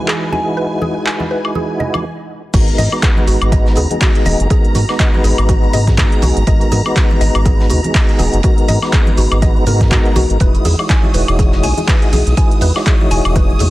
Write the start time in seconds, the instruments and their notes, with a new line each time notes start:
Already playing: ambient pad E3 D#5, tonewheel organ G#3 D#4 E4 F#4 B4, string machine G#5
0.08 synth arpeggio sound G#4, clap
0.32 synth arpeggio sound G#5, high conga
0.57 synth arpeggio sound B4
0.82 synth arpeggio sound G#4, high conga
1.06 synth arpeggio sound G#5, clap
1.20 high conga
1.31 synth arpeggio sound B4
1.45 high woodblock
1.55 synth arpeggio sound G#4, high conga
1.80 synth arpeggio sound D#5, low conga
1.94 high conga, high woodblock
2.53 analog synth bass G#1, tonewheel organ G#3 B3 D#4 F#4 A#4, synth arpeggio sound F#4, string machine A#5, kick, closed hi-hat, crash, cabasa
2.67 closed hi-hat, cabasa
2.78 analog synth bass G#2, synth arpeggio sound D#5, closed hi-hat, open hi-hat, high conga, cabasa
2.92 tonewheel organ G#3 B3 D#4 F#4 B4, cabasa, high woodblock
3.03 synth arpeggio sound G#4, kick, snare, clap, closed hi-hat, cabasa
3.17 high conga, cabasa
3.27 analog synth bass G#1, synth arpeggio sound F#4, closed hi-hat, open hi-hat, cabasa
3.42 analog synth bass G#1, closed hi-hat, cabasa, high woodblock
3.52 synth arpeggio sound D#5, kick, closed hi-hat, high conga, cabasa
3.66 snare, cabasa
3.76 analog synth bass D#2, synth arpeggio sound G#4, closed hi-hat, open hi-hat, low conga, cabasa
3.90 tonewheel organ G#3 B3 D#4 F#4 G#4, closed hi-hat, high conga, cabasa
4.01 synth arpeggio sound F#4, kick, snare, clap, closed hi-hat, open hi-hat, cabasa
4.15 closed hi-hat, cabasa
4.26 analog synth bass D#1, synth arpeggio sound D#5, closed hi-hat, open hi-hat, high conga, cabasa
4.40 analog synth bass F#1, closed hi-hat, cabasa
4.50 tonewheel organ G#3 B3 D#4 F#4 A#4, synth arpeggio sound G#4, kick, closed hi-hat, cabasa
4.64 closed hi-hat, cabasa
4.75 analog synth bass G#2, synth arpeggio sound F#4, closed hi-hat, open hi-hat, high conga, cabasa
4.89 tonewheel organ G#3 B3 D#4 F#4 B4, snare, cabasa, high woodblock
4.99 synth arpeggio sound D#5, kick, snare, clap, closed hi-hat, cabasa
5.14 high conga, cabasa
5.24 analog synth bass G#1, synth arpeggio sound G#4, closed hi-hat, open hi-hat, cabasa
5.38 analog synth bass G#1, closed hi-hat, cabasa, high woodblock
5.49 synth arpeggio sound F#4, kick, closed hi-hat, high conga, cabasa
5.63 cabasa
5.73 analog synth bass G#2, synth arpeggio sound D#5, closed hi-hat, open hi-hat, low conga, cabasa
5.87 tonewheel organ G#3 B3 D#4 F#4 G#4, kick, snare, closed hi-hat, high conga, cabasa
5.98 synth arpeggio sound G#4, kick, snare, clap, closed hi-hat, cabasa
6.12 closed hi-hat, cabasa
6.22 analog synth bass B1, synth arpeggio sound F#4, closed hi-hat, open hi-hat, high conga, cabasa
6.37 analog synth bass G#1, closed hi-hat, cabasa
6.47 analog synth bass G#1, tonewheel organ G#3 B3 D#4 F#4 A#4, synth arpeggio sound D#5, kick, closed hi-hat, cabasa
6.61 closed hi-hat, cabasa
6.72 analog synth bass G#2, synth arpeggio sound G#4, closed hi-hat, open hi-hat, high conga, cabasa
6.85 tonewheel organ G#3 B3 D#4 F#4 B4, cabasa, high woodblock
6.96 synth arpeggio sound F#4, kick, snare, clap, closed hi-hat, cabasa
7.10 high conga, cabasa
7.21 analog synth bass G#1, synth arpeggio sound D#5, closed hi-hat, open hi-hat, cabasa
7.35 analog synth bass G#1, closed hi-hat, cabasa, high woodblock
7.46 synth arpeggio sound G#4, kick, closed hi-hat, high conga, cabasa
7.60 snare, cabasa
7.70 analog synth bass D#2, synth arpeggio sound F#4, closed hi-hat, open hi-hat, low conga, cabasa
7.84 tonewheel organ G#3 B3 D#4 F#4 G#4, closed hi-hat, high conga, cabasa
7.95 synth arpeggio sound D#5, kick, snare, clap, closed hi-hat, open hi-hat, cabasa
8.09 closed hi-hat, cabasa
8.19 analog synth bass D#1, synth arpeggio sound G#4, closed hi-hat, open hi-hat, high conga, cabasa
8.33 analog synth bass F#1, closed hi-hat, cabasa
8.43 tonewheel organ G#3 B3 D#4 F#4 A#4, synth arpeggio sound F#4, kick, closed hi-hat, cabasa
8.58 closed hi-hat, cabasa
8.68 analog synth bass G#2, synth arpeggio sound D#5, closed hi-hat, open hi-hat, high conga, cabasa
8.82 tonewheel organ G#3 B3 D#4 F#4 B4, snare, cabasa, high woodblock
8.92 synth arpeggio sound G#4, kick, snare, clap, closed hi-hat, cabasa
9.07 closed hi-hat, high conga, cabasa
9.18 analog synth bass G#1, synth arpeggio sound F#4, closed hi-hat, open hi-hat, cabasa
9.32 analog synth bass G#1, closed hi-hat, cabasa, high woodblock
9.42 synth arpeggio sound D#5, kick, closed hi-hat, high conga, cabasa
9.56 cabasa
9.66 analog synth bass G#2, tonewheel organ G#3 B3 D#4 F#4 A#4, synth arpeggio sound A#4, closed hi-hat, open hi-hat, low conga, cabasa
9.81 kick, snare, closed hi-hat, high conga, cabasa
9.91 synth arpeggio sound F#4, kick, snare, clap, closed hi-hat, cabasa
10.05 closed hi-hat, cabasa
10.16 analog synth bass B1, synth arpeggio sound F#4, closed hi-hat, open hi-hat, high conga, cabasa
10.30 analog synth bass G#1, closed hi-hat, cabasa
10.40 analog synth bass E1, tonewheel organ G#3 E4 F#4 B4, synth arpeggio sound B4, string machine D#6, kick, closed hi-hat, cabasa
10.55 closed hi-hat, cabasa
10.65 analog synth bass E2, synth arpeggio sound G#4, closed hi-hat, open hi-hat, ride, high conga, cabasa
10.79 tonewheel organ G#3 D#4 E4 F#4 C#5, cabasa, high woodblock
10.89 synth arpeggio sound G#5, kick, snare, clap, closed hi-hat, cabasa
11.03 high conga, cabasa
11.14 analog synth bass E1, synth arpeggio sound B4, closed hi-hat, open hi-hat, ride, cabasa
11.28 analog synth bass E1, closed hi-hat, cabasa, high woodblock
11.39 synth arpeggio sound G#4, kick, closed hi-hat, high conga, cabasa
11.52 snare, cabasa
11.63 analog synth bass B1, synth arpeggio sound G#5, closed hi-hat, open hi-hat, ride, low conga, cabasa
11.77 tonewheel organ G#3 D#4 E4 F#4 G#4, closed hi-hat, high conga, cabasa
11.87 synth arpeggio sound B4, kick, snare, clap, closed hi-hat, open hi-hat, cabasa
12.02 closed hi-hat, cabasa
12.13 analog synth bass B1, synth arpeggio sound G#4, closed hi-hat, open hi-hat, ride, high conga, cabasa
12.27 analog synth bass B1, closed hi-hat, cabasa
12.37 tonewheel organ G#3 D#4 E4 F#4 B4, synth arpeggio sound G#5, kick, closed hi-hat, cabasa
12.51 closed hi-hat, cabasa
12.61 analog synth bass E2, synth arpeggio sound B4, closed hi-hat, open hi-hat, ride, high conga, cabasa
12.75 tonewheel organ G#3 D#4 E4 F#4 C#5, snare, cabasa, high woodblock
12.86 synth arpeggio sound G#4, kick, snare, clap, closed hi-hat, cabasa
13.01 high conga, cabasa
13.11 analog synth bass E1, synth arpeggio sound G#5, closed hi-hat, open hi-hat, ride, cabasa
13.25 analog synth bass E1, closed hi-hat, cabasa, high woodblock
13.36 synth arpeggio sound B4, kick, closed hi-hat, high conga, cabasa
13.50 cabasa
13.59 analog synth bass E2, synth arpeggio sound G#4, closed hi-hat, open hi-hat, ride, low conga, cabasa